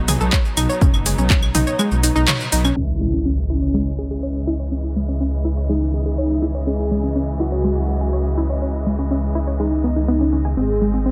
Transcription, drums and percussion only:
0, 0, Header, 1, 2, 480
1, 0, Start_track
1, 0, Key_signature, 4, "minor"
1, 0, Tempo, 487805
1, 802, Time_signature, 4, 2, 24, 8
1, 10937, End_track
2, 0, Start_track
2, 0, Title_t, "Drums"
2, 81, Note_on_c, 9, 45, 93
2, 81, Note_on_c, 9, 46, 102
2, 81, Note_on_c, 9, 75, 52
2, 81, Note_on_c, 9, 82, 79
2, 180, Note_off_c, 9, 45, 0
2, 180, Note_off_c, 9, 46, 0
2, 180, Note_off_c, 9, 75, 0
2, 180, Note_off_c, 9, 82, 0
2, 202, Note_on_c, 9, 82, 36
2, 301, Note_off_c, 9, 82, 0
2, 321, Note_on_c, 9, 39, 102
2, 321, Note_on_c, 9, 82, 46
2, 322, Note_on_c, 9, 36, 112
2, 420, Note_off_c, 9, 36, 0
2, 420, Note_off_c, 9, 39, 0
2, 420, Note_off_c, 9, 82, 0
2, 443, Note_on_c, 9, 82, 23
2, 541, Note_off_c, 9, 82, 0
2, 562, Note_on_c, 9, 46, 88
2, 562, Note_on_c, 9, 75, 78
2, 562, Note_on_c, 9, 82, 81
2, 660, Note_off_c, 9, 46, 0
2, 660, Note_off_c, 9, 75, 0
2, 660, Note_off_c, 9, 82, 0
2, 683, Note_on_c, 9, 82, 36
2, 781, Note_off_c, 9, 82, 0
2, 802, Note_on_c, 9, 36, 112
2, 803, Note_on_c, 9, 45, 90
2, 803, Note_on_c, 9, 82, 48
2, 900, Note_off_c, 9, 36, 0
2, 901, Note_off_c, 9, 45, 0
2, 901, Note_off_c, 9, 82, 0
2, 923, Note_on_c, 9, 75, 51
2, 923, Note_on_c, 9, 82, 23
2, 1022, Note_off_c, 9, 75, 0
2, 1022, Note_off_c, 9, 82, 0
2, 1042, Note_on_c, 9, 46, 104
2, 1042, Note_on_c, 9, 82, 84
2, 1140, Note_off_c, 9, 46, 0
2, 1140, Note_off_c, 9, 82, 0
2, 1163, Note_on_c, 9, 82, 35
2, 1261, Note_off_c, 9, 82, 0
2, 1282, Note_on_c, 9, 36, 115
2, 1282, Note_on_c, 9, 39, 107
2, 1282, Note_on_c, 9, 82, 48
2, 1380, Note_off_c, 9, 36, 0
2, 1380, Note_off_c, 9, 39, 0
2, 1380, Note_off_c, 9, 82, 0
2, 1403, Note_on_c, 9, 75, 78
2, 1403, Note_on_c, 9, 82, 23
2, 1501, Note_off_c, 9, 75, 0
2, 1501, Note_off_c, 9, 82, 0
2, 1522, Note_on_c, 9, 45, 91
2, 1522, Note_on_c, 9, 46, 87
2, 1522, Note_on_c, 9, 82, 83
2, 1621, Note_off_c, 9, 45, 0
2, 1621, Note_off_c, 9, 46, 0
2, 1621, Note_off_c, 9, 82, 0
2, 1643, Note_on_c, 9, 82, 36
2, 1741, Note_off_c, 9, 82, 0
2, 1762, Note_on_c, 9, 75, 49
2, 1762, Note_on_c, 9, 82, 48
2, 1860, Note_off_c, 9, 75, 0
2, 1860, Note_off_c, 9, 82, 0
2, 1883, Note_on_c, 9, 82, 23
2, 1981, Note_off_c, 9, 82, 0
2, 2002, Note_on_c, 9, 46, 101
2, 2002, Note_on_c, 9, 82, 80
2, 2101, Note_off_c, 9, 46, 0
2, 2101, Note_off_c, 9, 82, 0
2, 2123, Note_on_c, 9, 82, 35
2, 2221, Note_off_c, 9, 82, 0
2, 2243, Note_on_c, 9, 39, 106
2, 2243, Note_on_c, 9, 45, 92
2, 2243, Note_on_c, 9, 75, 74
2, 2243, Note_on_c, 9, 82, 47
2, 2341, Note_off_c, 9, 39, 0
2, 2341, Note_off_c, 9, 45, 0
2, 2341, Note_off_c, 9, 75, 0
2, 2341, Note_off_c, 9, 82, 0
2, 2364, Note_on_c, 9, 82, 24
2, 2462, Note_off_c, 9, 82, 0
2, 2483, Note_on_c, 9, 46, 90
2, 2483, Note_on_c, 9, 82, 84
2, 2581, Note_off_c, 9, 46, 0
2, 2581, Note_off_c, 9, 82, 0
2, 2603, Note_on_c, 9, 75, 53
2, 2603, Note_on_c, 9, 82, 37
2, 2702, Note_off_c, 9, 75, 0
2, 2702, Note_off_c, 9, 82, 0
2, 10937, End_track
0, 0, End_of_file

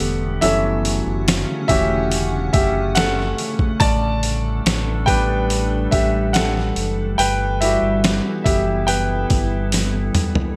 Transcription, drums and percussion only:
0, 0, Header, 1, 2, 480
1, 0, Start_track
1, 0, Tempo, 845070
1, 243, Time_signature, 4, 2, 24, 8
1, 5998, End_track
2, 0, Start_track
2, 0, Title_t, "Drums"
2, 1, Note_on_c, 9, 46, 66
2, 58, Note_off_c, 9, 46, 0
2, 239, Note_on_c, 9, 46, 102
2, 296, Note_off_c, 9, 46, 0
2, 483, Note_on_c, 9, 46, 80
2, 540, Note_off_c, 9, 46, 0
2, 726, Note_on_c, 9, 46, 99
2, 729, Note_on_c, 9, 38, 100
2, 783, Note_off_c, 9, 46, 0
2, 786, Note_off_c, 9, 38, 0
2, 961, Note_on_c, 9, 36, 93
2, 962, Note_on_c, 9, 46, 79
2, 1018, Note_off_c, 9, 36, 0
2, 1019, Note_off_c, 9, 46, 0
2, 1201, Note_on_c, 9, 46, 98
2, 1258, Note_off_c, 9, 46, 0
2, 1440, Note_on_c, 9, 46, 64
2, 1443, Note_on_c, 9, 36, 89
2, 1497, Note_off_c, 9, 46, 0
2, 1499, Note_off_c, 9, 36, 0
2, 1678, Note_on_c, 9, 46, 104
2, 1689, Note_on_c, 9, 38, 112
2, 1735, Note_off_c, 9, 46, 0
2, 1745, Note_off_c, 9, 38, 0
2, 1812, Note_on_c, 9, 38, 36
2, 1869, Note_off_c, 9, 38, 0
2, 1923, Note_on_c, 9, 46, 70
2, 1979, Note_off_c, 9, 46, 0
2, 2040, Note_on_c, 9, 36, 82
2, 2097, Note_off_c, 9, 36, 0
2, 2161, Note_on_c, 9, 36, 127
2, 2161, Note_on_c, 9, 46, 108
2, 2218, Note_off_c, 9, 36, 0
2, 2218, Note_off_c, 9, 46, 0
2, 2402, Note_on_c, 9, 46, 81
2, 2459, Note_off_c, 9, 46, 0
2, 2647, Note_on_c, 9, 46, 98
2, 2651, Note_on_c, 9, 38, 106
2, 2704, Note_off_c, 9, 46, 0
2, 2708, Note_off_c, 9, 38, 0
2, 2882, Note_on_c, 9, 36, 96
2, 2885, Note_on_c, 9, 46, 78
2, 2939, Note_off_c, 9, 36, 0
2, 2941, Note_off_c, 9, 46, 0
2, 3125, Note_on_c, 9, 46, 95
2, 3182, Note_off_c, 9, 46, 0
2, 3364, Note_on_c, 9, 46, 66
2, 3366, Note_on_c, 9, 36, 93
2, 3421, Note_off_c, 9, 46, 0
2, 3422, Note_off_c, 9, 36, 0
2, 3602, Note_on_c, 9, 46, 106
2, 3612, Note_on_c, 9, 38, 119
2, 3658, Note_off_c, 9, 46, 0
2, 3669, Note_off_c, 9, 38, 0
2, 3733, Note_on_c, 9, 38, 35
2, 3790, Note_off_c, 9, 38, 0
2, 3841, Note_on_c, 9, 46, 68
2, 3898, Note_off_c, 9, 46, 0
2, 4084, Note_on_c, 9, 46, 110
2, 4141, Note_off_c, 9, 46, 0
2, 4326, Note_on_c, 9, 46, 82
2, 4383, Note_off_c, 9, 46, 0
2, 4566, Note_on_c, 9, 46, 87
2, 4570, Note_on_c, 9, 38, 105
2, 4623, Note_off_c, 9, 46, 0
2, 4626, Note_off_c, 9, 38, 0
2, 4803, Note_on_c, 9, 36, 95
2, 4806, Note_on_c, 9, 46, 75
2, 4860, Note_off_c, 9, 36, 0
2, 4863, Note_off_c, 9, 46, 0
2, 5043, Note_on_c, 9, 46, 98
2, 5100, Note_off_c, 9, 46, 0
2, 5282, Note_on_c, 9, 46, 62
2, 5285, Note_on_c, 9, 36, 87
2, 5339, Note_off_c, 9, 46, 0
2, 5342, Note_off_c, 9, 36, 0
2, 5522, Note_on_c, 9, 46, 112
2, 5532, Note_on_c, 9, 38, 64
2, 5579, Note_off_c, 9, 46, 0
2, 5589, Note_off_c, 9, 38, 0
2, 5763, Note_on_c, 9, 45, 102
2, 5763, Note_on_c, 9, 46, 69
2, 5820, Note_off_c, 9, 45, 0
2, 5820, Note_off_c, 9, 46, 0
2, 5881, Note_on_c, 9, 43, 98
2, 5938, Note_off_c, 9, 43, 0
2, 5998, End_track
0, 0, End_of_file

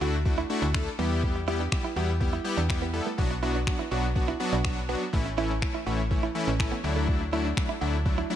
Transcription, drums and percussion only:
0, 0, Header, 1, 2, 480
1, 0, Start_track
1, 0, Tempo, 487805
1, 1211, Time_signature, 4, 2, 24, 8
1, 8222, End_track
2, 0, Start_track
2, 0, Title_t, "Drums"
2, 251, Note_on_c, 9, 36, 113
2, 349, Note_off_c, 9, 36, 0
2, 731, Note_on_c, 9, 36, 101
2, 733, Note_on_c, 9, 26, 111
2, 830, Note_off_c, 9, 36, 0
2, 831, Note_off_c, 9, 26, 0
2, 1212, Note_on_c, 9, 36, 98
2, 1311, Note_off_c, 9, 36, 0
2, 1692, Note_on_c, 9, 36, 118
2, 1694, Note_on_c, 9, 26, 110
2, 1790, Note_off_c, 9, 36, 0
2, 1793, Note_off_c, 9, 26, 0
2, 2172, Note_on_c, 9, 36, 111
2, 2271, Note_off_c, 9, 36, 0
2, 2652, Note_on_c, 9, 36, 105
2, 2654, Note_on_c, 9, 26, 114
2, 2750, Note_off_c, 9, 36, 0
2, 2752, Note_off_c, 9, 26, 0
2, 3132, Note_on_c, 9, 36, 102
2, 3230, Note_off_c, 9, 36, 0
2, 3611, Note_on_c, 9, 36, 115
2, 3612, Note_on_c, 9, 26, 112
2, 3709, Note_off_c, 9, 36, 0
2, 3711, Note_off_c, 9, 26, 0
2, 4090, Note_on_c, 9, 36, 107
2, 4189, Note_off_c, 9, 36, 0
2, 4571, Note_on_c, 9, 26, 115
2, 4571, Note_on_c, 9, 36, 106
2, 4669, Note_off_c, 9, 36, 0
2, 4670, Note_off_c, 9, 26, 0
2, 5051, Note_on_c, 9, 36, 104
2, 5150, Note_off_c, 9, 36, 0
2, 5530, Note_on_c, 9, 36, 121
2, 5533, Note_on_c, 9, 26, 111
2, 5629, Note_off_c, 9, 36, 0
2, 5631, Note_off_c, 9, 26, 0
2, 6010, Note_on_c, 9, 36, 113
2, 6109, Note_off_c, 9, 36, 0
2, 6490, Note_on_c, 9, 36, 105
2, 6493, Note_on_c, 9, 26, 111
2, 6588, Note_off_c, 9, 36, 0
2, 6591, Note_off_c, 9, 26, 0
2, 6970, Note_on_c, 9, 36, 99
2, 7068, Note_off_c, 9, 36, 0
2, 7448, Note_on_c, 9, 36, 118
2, 7451, Note_on_c, 9, 26, 112
2, 7547, Note_off_c, 9, 36, 0
2, 7549, Note_off_c, 9, 26, 0
2, 7928, Note_on_c, 9, 36, 115
2, 8026, Note_off_c, 9, 36, 0
2, 8222, End_track
0, 0, End_of_file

